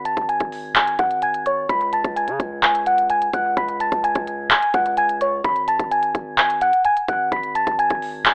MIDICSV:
0, 0, Header, 1, 4, 480
1, 0, Start_track
1, 0, Tempo, 468750
1, 1735, Time_signature, 4, 2, 24, 8
1, 8540, End_track
2, 0, Start_track
2, 0, Title_t, "Synth bell"
2, 0, Program_c, 0, 98
2, 54, Note_on_c, 0, 81, 85
2, 62, Note_on_c, 0, 93, 60
2, 261, Note_off_c, 0, 81, 0
2, 265, Note_off_c, 0, 93, 0
2, 295, Note_on_c, 0, 80, 75
2, 303, Note_on_c, 0, 92, 62
2, 746, Note_off_c, 0, 80, 0
2, 750, Note_off_c, 0, 92, 0
2, 775, Note_on_c, 0, 80, 84
2, 783, Note_on_c, 0, 92, 61
2, 981, Note_off_c, 0, 80, 0
2, 986, Note_off_c, 0, 92, 0
2, 1014, Note_on_c, 0, 78, 86
2, 1022, Note_on_c, 0, 90, 65
2, 1220, Note_off_c, 0, 78, 0
2, 1225, Note_off_c, 0, 90, 0
2, 1254, Note_on_c, 0, 80, 81
2, 1262, Note_on_c, 0, 92, 68
2, 1460, Note_off_c, 0, 80, 0
2, 1465, Note_off_c, 0, 92, 0
2, 1495, Note_on_c, 0, 85, 70
2, 1503, Note_on_c, 0, 73, 54
2, 1701, Note_off_c, 0, 85, 0
2, 1706, Note_off_c, 0, 73, 0
2, 1734, Note_on_c, 0, 83, 112
2, 1742, Note_on_c, 0, 95, 90
2, 1940, Note_off_c, 0, 83, 0
2, 1945, Note_off_c, 0, 95, 0
2, 1976, Note_on_c, 0, 81, 81
2, 1984, Note_on_c, 0, 93, 66
2, 2181, Note_off_c, 0, 81, 0
2, 2186, Note_off_c, 0, 93, 0
2, 2214, Note_on_c, 0, 80, 74
2, 2222, Note_on_c, 0, 92, 57
2, 2665, Note_off_c, 0, 80, 0
2, 2670, Note_off_c, 0, 92, 0
2, 2694, Note_on_c, 0, 80, 90
2, 2702, Note_on_c, 0, 92, 74
2, 2900, Note_off_c, 0, 80, 0
2, 2905, Note_off_c, 0, 92, 0
2, 2936, Note_on_c, 0, 78, 77
2, 2944, Note_on_c, 0, 90, 62
2, 3141, Note_off_c, 0, 78, 0
2, 3146, Note_off_c, 0, 90, 0
2, 3175, Note_on_c, 0, 80, 89
2, 3183, Note_on_c, 0, 92, 64
2, 3381, Note_off_c, 0, 80, 0
2, 3386, Note_off_c, 0, 92, 0
2, 3415, Note_on_c, 0, 78, 84
2, 3423, Note_on_c, 0, 90, 66
2, 3621, Note_off_c, 0, 78, 0
2, 3625, Note_off_c, 0, 90, 0
2, 3655, Note_on_c, 0, 83, 102
2, 3663, Note_on_c, 0, 95, 73
2, 3861, Note_off_c, 0, 83, 0
2, 3865, Note_off_c, 0, 95, 0
2, 3895, Note_on_c, 0, 81, 77
2, 3903, Note_on_c, 0, 93, 64
2, 4101, Note_off_c, 0, 81, 0
2, 4106, Note_off_c, 0, 93, 0
2, 4135, Note_on_c, 0, 80, 81
2, 4143, Note_on_c, 0, 92, 57
2, 4586, Note_off_c, 0, 80, 0
2, 4590, Note_off_c, 0, 92, 0
2, 4615, Note_on_c, 0, 80, 94
2, 4623, Note_on_c, 0, 92, 64
2, 4821, Note_off_c, 0, 80, 0
2, 4825, Note_off_c, 0, 92, 0
2, 4855, Note_on_c, 0, 78, 73
2, 4863, Note_on_c, 0, 90, 61
2, 5061, Note_off_c, 0, 78, 0
2, 5065, Note_off_c, 0, 90, 0
2, 5094, Note_on_c, 0, 80, 86
2, 5103, Note_on_c, 0, 92, 70
2, 5301, Note_off_c, 0, 80, 0
2, 5305, Note_off_c, 0, 92, 0
2, 5335, Note_on_c, 0, 85, 75
2, 5343, Note_on_c, 0, 73, 55
2, 5541, Note_off_c, 0, 85, 0
2, 5546, Note_off_c, 0, 73, 0
2, 5576, Note_on_c, 0, 83, 108
2, 5584, Note_on_c, 0, 95, 83
2, 5782, Note_off_c, 0, 83, 0
2, 5786, Note_off_c, 0, 95, 0
2, 5815, Note_on_c, 0, 81, 88
2, 5823, Note_on_c, 0, 93, 61
2, 6021, Note_off_c, 0, 81, 0
2, 6026, Note_off_c, 0, 93, 0
2, 6055, Note_on_c, 0, 80, 76
2, 6063, Note_on_c, 0, 92, 58
2, 6506, Note_off_c, 0, 80, 0
2, 6510, Note_off_c, 0, 92, 0
2, 6535, Note_on_c, 0, 80, 98
2, 6543, Note_on_c, 0, 92, 74
2, 6741, Note_off_c, 0, 80, 0
2, 6745, Note_off_c, 0, 92, 0
2, 6774, Note_on_c, 0, 78, 81
2, 6783, Note_on_c, 0, 90, 66
2, 6981, Note_off_c, 0, 78, 0
2, 6985, Note_off_c, 0, 90, 0
2, 7015, Note_on_c, 0, 80, 93
2, 7024, Note_on_c, 0, 92, 70
2, 7221, Note_off_c, 0, 80, 0
2, 7226, Note_off_c, 0, 92, 0
2, 7255, Note_on_c, 0, 78, 87
2, 7263, Note_on_c, 0, 90, 63
2, 7461, Note_off_c, 0, 78, 0
2, 7466, Note_off_c, 0, 90, 0
2, 7494, Note_on_c, 0, 83, 93
2, 7502, Note_on_c, 0, 95, 77
2, 7700, Note_off_c, 0, 83, 0
2, 7705, Note_off_c, 0, 95, 0
2, 7734, Note_on_c, 0, 81, 82
2, 7742, Note_on_c, 0, 93, 63
2, 7940, Note_off_c, 0, 81, 0
2, 7945, Note_off_c, 0, 93, 0
2, 7974, Note_on_c, 0, 80, 77
2, 7982, Note_on_c, 0, 92, 64
2, 8426, Note_off_c, 0, 80, 0
2, 8430, Note_off_c, 0, 92, 0
2, 8456, Note_on_c, 0, 80, 85
2, 8464, Note_on_c, 0, 92, 62
2, 8540, Note_off_c, 0, 80, 0
2, 8540, Note_off_c, 0, 92, 0
2, 8540, End_track
3, 0, Start_track
3, 0, Title_t, "808-style bass"
3, 0, Program_c, 1, 38
3, 0, Note_on_c, 1, 32, 108
3, 160, Note_off_c, 1, 32, 0
3, 174, Note_on_c, 1, 32, 106
3, 405, Note_off_c, 1, 32, 0
3, 415, Note_on_c, 1, 32, 104
3, 991, Note_off_c, 1, 32, 0
3, 1015, Note_on_c, 1, 32, 104
3, 1706, Note_off_c, 1, 32, 0
3, 1735, Note_on_c, 1, 37, 109
3, 2080, Note_off_c, 1, 37, 0
3, 2094, Note_on_c, 1, 37, 108
3, 2335, Note_on_c, 1, 49, 104
3, 2350, Note_off_c, 1, 37, 0
3, 2449, Note_off_c, 1, 49, 0
3, 2455, Note_on_c, 1, 37, 107
3, 3376, Note_off_c, 1, 37, 0
3, 3415, Note_on_c, 1, 37, 101
3, 3645, Note_off_c, 1, 37, 0
3, 3655, Note_on_c, 1, 37, 109
3, 4000, Note_off_c, 1, 37, 0
3, 4014, Note_on_c, 1, 37, 99
3, 4245, Note_off_c, 1, 37, 0
3, 4255, Note_on_c, 1, 37, 108
3, 4601, Note_off_c, 1, 37, 0
3, 4855, Note_on_c, 1, 37, 108
3, 5546, Note_off_c, 1, 37, 0
3, 5575, Note_on_c, 1, 32, 107
3, 5920, Note_off_c, 1, 32, 0
3, 5934, Note_on_c, 1, 32, 106
3, 6280, Note_off_c, 1, 32, 0
3, 6295, Note_on_c, 1, 32, 106
3, 6871, Note_off_c, 1, 32, 0
3, 7255, Note_on_c, 1, 32, 106
3, 7485, Note_off_c, 1, 32, 0
3, 7495, Note_on_c, 1, 32, 111
3, 7840, Note_off_c, 1, 32, 0
3, 7854, Note_on_c, 1, 32, 102
3, 8084, Note_off_c, 1, 32, 0
3, 8095, Note_on_c, 1, 32, 106
3, 8540, Note_off_c, 1, 32, 0
3, 8540, End_track
4, 0, Start_track
4, 0, Title_t, "Drums"
4, 54, Note_on_c, 9, 42, 88
4, 157, Note_off_c, 9, 42, 0
4, 174, Note_on_c, 9, 36, 99
4, 176, Note_on_c, 9, 42, 68
4, 276, Note_off_c, 9, 36, 0
4, 278, Note_off_c, 9, 42, 0
4, 297, Note_on_c, 9, 42, 89
4, 400, Note_off_c, 9, 42, 0
4, 412, Note_on_c, 9, 42, 58
4, 415, Note_on_c, 9, 36, 99
4, 515, Note_off_c, 9, 42, 0
4, 517, Note_off_c, 9, 36, 0
4, 536, Note_on_c, 9, 46, 75
4, 639, Note_off_c, 9, 46, 0
4, 774, Note_on_c, 9, 39, 122
4, 778, Note_on_c, 9, 42, 80
4, 876, Note_off_c, 9, 39, 0
4, 880, Note_off_c, 9, 42, 0
4, 896, Note_on_c, 9, 42, 66
4, 998, Note_off_c, 9, 42, 0
4, 1013, Note_on_c, 9, 42, 77
4, 1015, Note_on_c, 9, 36, 92
4, 1115, Note_off_c, 9, 42, 0
4, 1117, Note_off_c, 9, 36, 0
4, 1134, Note_on_c, 9, 42, 55
4, 1236, Note_off_c, 9, 42, 0
4, 1251, Note_on_c, 9, 42, 83
4, 1353, Note_off_c, 9, 42, 0
4, 1375, Note_on_c, 9, 42, 61
4, 1478, Note_off_c, 9, 42, 0
4, 1495, Note_on_c, 9, 42, 87
4, 1597, Note_off_c, 9, 42, 0
4, 1735, Note_on_c, 9, 36, 123
4, 1735, Note_on_c, 9, 42, 84
4, 1837, Note_off_c, 9, 36, 0
4, 1838, Note_off_c, 9, 42, 0
4, 1852, Note_on_c, 9, 42, 47
4, 1955, Note_off_c, 9, 42, 0
4, 1974, Note_on_c, 9, 42, 87
4, 2077, Note_off_c, 9, 42, 0
4, 2094, Note_on_c, 9, 36, 98
4, 2096, Note_on_c, 9, 42, 69
4, 2196, Note_off_c, 9, 36, 0
4, 2198, Note_off_c, 9, 42, 0
4, 2217, Note_on_c, 9, 42, 88
4, 2320, Note_off_c, 9, 42, 0
4, 2332, Note_on_c, 9, 42, 60
4, 2435, Note_off_c, 9, 42, 0
4, 2455, Note_on_c, 9, 36, 94
4, 2457, Note_on_c, 9, 42, 69
4, 2557, Note_off_c, 9, 36, 0
4, 2559, Note_off_c, 9, 42, 0
4, 2694, Note_on_c, 9, 39, 120
4, 2698, Note_on_c, 9, 42, 83
4, 2796, Note_off_c, 9, 39, 0
4, 2800, Note_off_c, 9, 42, 0
4, 2815, Note_on_c, 9, 42, 65
4, 2918, Note_off_c, 9, 42, 0
4, 2932, Note_on_c, 9, 42, 76
4, 3035, Note_off_c, 9, 42, 0
4, 3054, Note_on_c, 9, 42, 54
4, 3156, Note_off_c, 9, 42, 0
4, 3171, Note_on_c, 9, 42, 82
4, 3273, Note_off_c, 9, 42, 0
4, 3296, Note_on_c, 9, 42, 59
4, 3398, Note_off_c, 9, 42, 0
4, 3415, Note_on_c, 9, 36, 89
4, 3415, Note_on_c, 9, 42, 85
4, 3517, Note_off_c, 9, 36, 0
4, 3517, Note_off_c, 9, 42, 0
4, 3655, Note_on_c, 9, 36, 123
4, 3656, Note_on_c, 9, 42, 84
4, 3757, Note_off_c, 9, 36, 0
4, 3758, Note_off_c, 9, 42, 0
4, 3773, Note_on_c, 9, 42, 48
4, 3875, Note_off_c, 9, 42, 0
4, 3894, Note_on_c, 9, 42, 89
4, 3997, Note_off_c, 9, 42, 0
4, 4014, Note_on_c, 9, 36, 98
4, 4016, Note_on_c, 9, 42, 67
4, 4116, Note_off_c, 9, 36, 0
4, 4118, Note_off_c, 9, 42, 0
4, 4138, Note_on_c, 9, 42, 89
4, 4240, Note_off_c, 9, 42, 0
4, 4253, Note_on_c, 9, 42, 61
4, 4255, Note_on_c, 9, 36, 102
4, 4355, Note_off_c, 9, 42, 0
4, 4358, Note_off_c, 9, 36, 0
4, 4377, Note_on_c, 9, 42, 66
4, 4479, Note_off_c, 9, 42, 0
4, 4614, Note_on_c, 9, 39, 120
4, 4618, Note_on_c, 9, 42, 82
4, 4717, Note_off_c, 9, 39, 0
4, 4721, Note_off_c, 9, 42, 0
4, 4736, Note_on_c, 9, 42, 64
4, 4839, Note_off_c, 9, 42, 0
4, 4853, Note_on_c, 9, 42, 75
4, 4855, Note_on_c, 9, 36, 93
4, 4956, Note_off_c, 9, 42, 0
4, 4957, Note_off_c, 9, 36, 0
4, 4974, Note_on_c, 9, 42, 55
4, 5077, Note_off_c, 9, 42, 0
4, 5091, Note_on_c, 9, 42, 80
4, 5194, Note_off_c, 9, 42, 0
4, 5216, Note_on_c, 9, 42, 60
4, 5318, Note_off_c, 9, 42, 0
4, 5335, Note_on_c, 9, 42, 89
4, 5437, Note_off_c, 9, 42, 0
4, 5575, Note_on_c, 9, 36, 125
4, 5576, Note_on_c, 9, 42, 84
4, 5677, Note_off_c, 9, 36, 0
4, 5678, Note_off_c, 9, 42, 0
4, 5693, Note_on_c, 9, 42, 47
4, 5795, Note_off_c, 9, 42, 0
4, 5814, Note_on_c, 9, 42, 88
4, 5917, Note_off_c, 9, 42, 0
4, 5934, Note_on_c, 9, 36, 101
4, 5936, Note_on_c, 9, 42, 69
4, 6036, Note_off_c, 9, 36, 0
4, 6038, Note_off_c, 9, 42, 0
4, 6057, Note_on_c, 9, 42, 88
4, 6160, Note_off_c, 9, 42, 0
4, 6172, Note_on_c, 9, 42, 59
4, 6275, Note_off_c, 9, 42, 0
4, 6295, Note_on_c, 9, 36, 93
4, 6297, Note_on_c, 9, 42, 67
4, 6397, Note_off_c, 9, 36, 0
4, 6399, Note_off_c, 9, 42, 0
4, 6534, Note_on_c, 9, 39, 116
4, 6538, Note_on_c, 9, 42, 80
4, 6636, Note_off_c, 9, 39, 0
4, 6640, Note_off_c, 9, 42, 0
4, 6656, Note_on_c, 9, 42, 65
4, 6758, Note_off_c, 9, 42, 0
4, 6773, Note_on_c, 9, 42, 76
4, 6875, Note_off_c, 9, 42, 0
4, 6894, Note_on_c, 9, 42, 53
4, 6996, Note_off_c, 9, 42, 0
4, 7011, Note_on_c, 9, 42, 83
4, 7113, Note_off_c, 9, 42, 0
4, 7135, Note_on_c, 9, 42, 60
4, 7237, Note_off_c, 9, 42, 0
4, 7254, Note_on_c, 9, 42, 86
4, 7255, Note_on_c, 9, 36, 94
4, 7357, Note_off_c, 9, 36, 0
4, 7357, Note_off_c, 9, 42, 0
4, 7495, Note_on_c, 9, 36, 123
4, 7495, Note_on_c, 9, 42, 82
4, 7597, Note_off_c, 9, 36, 0
4, 7598, Note_off_c, 9, 42, 0
4, 7613, Note_on_c, 9, 42, 47
4, 7715, Note_off_c, 9, 42, 0
4, 7734, Note_on_c, 9, 42, 87
4, 7836, Note_off_c, 9, 42, 0
4, 7854, Note_on_c, 9, 36, 96
4, 7855, Note_on_c, 9, 42, 68
4, 7956, Note_off_c, 9, 36, 0
4, 7958, Note_off_c, 9, 42, 0
4, 7977, Note_on_c, 9, 42, 88
4, 8080, Note_off_c, 9, 42, 0
4, 8092, Note_on_c, 9, 42, 61
4, 8095, Note_on_c, 9, 36, 98
4, 8195, Note_off_c, 9, 42, 0
4, 8197, Note_off_c, 9, 36, 0
4, 8216, Note_on_c, 9, 46, 72
4, 8319, Note_off_c, 9, 46, 0
4, 8454, Note_on_c, 9, 39, 123
4, 8458, Note_on_c, 9, 42, 82
4, 8540, Note_off_c, 9, 39, 0
4, 8540, Note_off_c, 9, 42, 0
4, 8540, End_track
0, 0, End_of_file